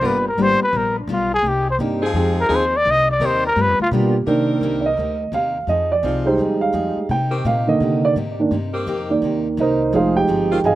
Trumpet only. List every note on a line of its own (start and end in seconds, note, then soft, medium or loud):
0.06 0.27 B4 medium
0.28 0.43 A#4 medium
0.42 0.62 C5 loud
0.63 0.78 B4 loud
0.77 0.98 A#4 medium
0.99 1.13 D4 soft
1.12 1.33 F4 medium
1.34 1.49 G#4 loud
1.48 1.69 G4 medium
1.70 1.77 C5 medium
2.41 2.57 A#4 loud
2.55 2.78 C5 loud
2.77 2.92 D5 loud
2.91 3.11 D#5 loud
3.12 3.27 D5 medium
3.26 3.46 C5 loud
3.47 3.63 A#4 loud
3.61 3.81 B4 loud
3.82 3.89 F4 loud